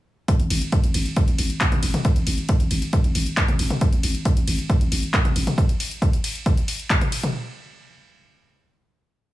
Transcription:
0.28 kick, closed hi-hat
0.39 808-style bass G#1, closed hi-hat
0.50 808-style bass G#1, open hi-hat, ride
0.62 closed hi-hat
0.72 kick, closed hi-hat
0.84 808-style bass G#1, closed hi-hat
0.94 808-style bass G#1, open hi-hat, ride
1.06 closed hi-hat
1.16 kick, closed hi-hat
1.28 808-style bass G#1, closed hi-hat
1.38 808-style bass G#1, open hi-hat, ride
1.50 closed hi-hat
1.61 kick, clap, closed hi-hat
1.72 808-style bass G#1, closed hi-hat, mid tom
1.83 808-style bass G#1, open hi-hat, ride
1.94 closed hi-hat, mid tom
2.05 kick, closed hi-hat
2.16 808-style bass G#1, closed hi-hat
2.27 808-style bass G#1, open hi-hat, ride
2.38 closed hi-hat
2.49 kick, closed hi-hat
2.60 808-style bass G#1, closed hi-hat
2.71 808-style bass G#1, open hi-hat, ride
2.82 closed hi-hat
2.93 kick, closed hi-hat
3.04 808-style bass G#1, closed hi-hat
3.15 808-style bass G#1, open hi-hat, ride
3.26 closed hi-hat
3.37 kick, clap, closed hi-hat
3.48 808-style bass G#1, closed hi-hat, mid tom
3.59 808-style bass G#1, open hi-hat, ride
3.70 closed hi-hat, mid tom
3.81 kick, closed hi-hat
3.92 808-style bass G#1, closed hi-hat
4.03 808-style bass G#1, open hi-hat, ride
4.15 closed hi-hat
4.25 kick, closed hi-hat
4.37 808-style bass G#1, closed hi-hat
4.47 808-style bass G#1, open hi-hat, ride
4.59 closed hi-hat
4.70 kick, closed hi-hat
4.81 808-style bass G#1, closed hi-hat
4.91 808-style bass G#1, open hi-hat, ride
5.03 closed hi-hat
5.14 kick, clap, closed hi-hat
5.25 808-style bass G#1, closed hi-hat, mid tom
5.36 808-style bass G#1, open hi-hat, ride
5.47 closed hi-hat, mid tom
5.58 kick, closed hi-hat
5.69 closed hi-hat
5.80 open hi-hat, ride
5.91 closed hi-hat
6.02 kick, closed hi-hat
6.13 closed hi-hat
6.24 open hi-hat, ride
6.35 closed hi-hat
6.46 kick, closed hi-hat
6.57 closed hi-hat
6.68 open hi-hat, ride
6.79 closed hi-hat
6.90 kick, clap, closed hi-hat
7.01 closed hi-hat, mid tom
7.12 open hi-hat, ride
7.23 closed hi-hat, mid tom

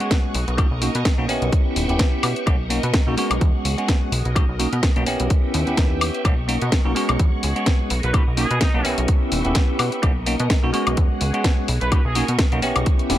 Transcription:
Already playing: string machine G#4 F#5 C#6
0.00 tine electric piano G#3 B3 C#4 F#4, closed hi-hat
0.11 kick, snare, closed hi-hat
0.34 analog synth bass B1, string machine A#4 D#5, open hi-hat
0.48 analog synth bass B1, closed hi-hat
0.58 tine electric piano A#3 C#4 D#4 F#4, kick, closed hi-hat, high woodblock
0.71 analog synth bass B1
0.81 tine electric piano A#3 C#4 D#4 F#4, open hi-hat
0.95 analog synth bass B2, closed hi-hat
1.05 kick, snare, closed hi-hat
1.18 analog synth bass B1, tine electric piano A#3 C#4 D#4 F#4
1.28 analog synth bass B1, tine electric piano B3 C#4 E4 G4, open hi-hat
1.42 analog synth bass B1, closed hi-hat
1.52 string machine B4 E5 G5, kick, closed hi-hat
1.76 analog synth bass D#1, open hi-hat
1.88 analog synth bass D#1, tine electric piano B3 C#4 E4 G4, closed hi-hat
1.99 kick, snare, closed hi-hat
2.23 analog synth bass B2, open hi-hat, high woodblock
2.36 closed hi-hat
2.46 analog synth bass B1, tine electric piano A#3 C#4 D#4 F#4, string machine A#4 D#5, kick, closed hi-hat, high woodblock
2.70 tine electric piano A#3 C#4 D#4 F#4, open hi-hat
2.83 analog synth bass B2, closed hi-hat
2.94 kick, snare, closed hi-hat
3.07 analog synth bass B1, tine electric piano A#3 C#4 D#4 F#4
3.17 tine electric piano G#3 B3 C#4 F#4, open hi-hat
3.31 analog synth bass B1, closed hi-hat, high woodblock
3.41 analog synth bass E2, string machine G#4 F#5, kick, closed hi-hat
3.65 analog synth bass C#2, open hi-hat
3.78 tine electric piano G#3 B3 C#4 F#4, closed hi-hat
3.88 kick, snare, closed hi-hat
4.12 analog synth bass B1, string machine A#4 D#5, open hi-hat
4.25 analog synth bass B1, closed hi-hat
4.35 tine electric piano A#3 C#4 D#4 F#4, kick, closed hi-hat, high woodblock
4.49 analog synth bass B1
4.59 tine electric piano A#3 C#4 D#4 F#4, open hi-hat
4.73 analog synth bass B2, closed hi-hat
4.83 kick, snare, closed hi-hat
4.96 analog synth bass B1, tine electric piano A#3 C#4 D#4 F#4, closed hi-hat
5.06 tine electric piano B3 C#4 E4 G4, open hi-hat
5.20 analog synth bass B1, closed hi-hat
5.30 string machine B4 E5 G5 C#6, kick, closed hi-hat
5.54 analog synth bass D#2, open hi-hat
5.67 analog synth bass D#2, tine electric piano B3 C#4 E4 G4, closed hi-hat
5.77 analog synth bass D#2, kick, snare, closed hi-hat
6.01 open hi-hat, high woodblock
6.14 closed hi-hat
6.25 analog synth bass B1, tine electric piano A#3 C#4 D#4 F#4, string machine A#4 D#5, kick, closed hi-hat, high woodblock
6.48 tine electric piano A#3 C#4 D#4 F#4, open hi-hat
6.62 analog synth bass B2, closed hi-hat
6.72 kick, snare, closed hi-hat
6.84 analog synth bass B1, tine electric piano A#3 C#4 D#4 F#4
6.95 tine electric piano G#3 B3 C#4 F#4, open hi-hat
7.09 analog synth bass B1, closed hi-hat, high woodblock
7.19 string machine G#4 F#5, kick, closed hi-hat
7.43 analog synth bass C#2, open hi-hat
7.55 tine electric piano G#3 B3 C#4 F#4, closed hi-hat
7.66 kick, snare, closed hi-hat
7.90 analog synth bass B1, string machine A#4 D#5, open hi-hat
8.03 analog synth bass B1, trumpet section B4, closed hi-hat
8.13 tine electric piano A#3 C#4 D#4 F#4, trumpet section B4, kick, closed hi-hat, high woodblock
8.28 analog synth bass B1
8.37 tine electric piano A#3 C#4 D#4 F#4, trumpet section G#4, open hi-hat
8.51 analog synth bass B2, closed hi-hat
8.61 trumpet section D#4, kick, snare, closed hi-hat
8.74 analog synth bass B1, tine electric piano A#3 C#4 D#4 F#4
8.84 analog synth bass B1, tine electric piano B3 C#4 E4 G4, open hi-hat
8.98 analog synth bass B1, closed hi-hat
9.08 string machine B4 E5 G5, kick, closed hi-hat
9.32 analog synth bass D#1, open hi-hat
9.44 analog synth bass D#1, tine electric piano B3 C#4 E4 G4, closed hi-hat
9.55 kick, snare, closed hi-hat
9.79 analog synth bass B2, open hi-hat, high woodblock
9.92 closed hi-hat
10.02 analog synth bass B1, tine electric piano A#3 C#4 D#4 F#4, string machine A#4 D#5, kick, closed hi-hat, high woodblock
10.26 tine electric piano A#3 C#4 D#4 F#4, open hi-hat
10.40 analog synth bass B2, closed hi-hat
10.50 kick, snare, closed hi-hat
10.63 analog synth bass B1, tine electric piano A#3 C#4 D#4 F#4
10.73 tine electric piano G#3 B3 C#4 F#4, open hi-hat
10.87 analog synth bass B1, closed hi-hat, high woodblock
10.97 analog synth bass E2, string machine G#4 F#5, kick, closed hi-hat
11.21 analog synth bass C#2, open hi-hat
11.33 tine electric piano G#3 B3 C#4 F#4, closed hi-hat
11.44 kick, snare, closed hi-hat
11.68 analog synth bass B1, string machine A#4 D#5 C#6, open hi-hat
11.81 analog synth bass B1, trumpet section B4, closed hi-hat
11.91 tine electric piano A#3 C#4 D#4 F#4, trumpet section B4, kick, closed hi-hat, high woodblock
12.05 analog synth bass B1, trumpet section G#4
12.15 tine electric piano A#3 C#4 D#4 F#4, open hi-hat
12.28 analog synth bass B2, closed hi-hat
12.39 kick, snare, closed hi-hat
12.52 analog synth bass B1, tine electric piano A#3 C#4 D#4 F#4, closed hi-hat
12.62 tine electric piano B3 C#4 E4 G4, open hi-hat
12.76 analog synth bass B1, closed hi-hat, high woodblock
12.86 string machine B4 E5 G5, kick, closed hi-hat
12.99 closed hi-hat
13.10 analog synth bass D#1, tine electric piano B3 C#4 E4 G4, snare, open hi-hat

